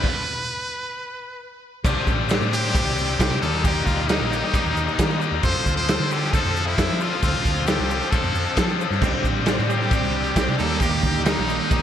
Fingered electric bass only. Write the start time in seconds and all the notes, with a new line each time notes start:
1.84 C2
2.07 A1
2.41 A2
2.87 C2
3.19 C2
3.31 C3
3.42 D#2
3.87 D2
4.20 A#1
4.65 D#2
4.76 D#2
4.99 D#3
5.31 D#2
5.44 F2
5.66 D2
6.00 D3
6.45 F2
6.78 F2
6.90 F3
7.23 D2
7.46 D2
7.79 C2
8.24 F2
8.35 F2
8.57 F3
8.91 G2
9.02 C2
9.24 A1
9.59 A2
10.03 C2
10.36 C2
10.48 C3
10.59 D#2
11.03 D2
11.38 A#1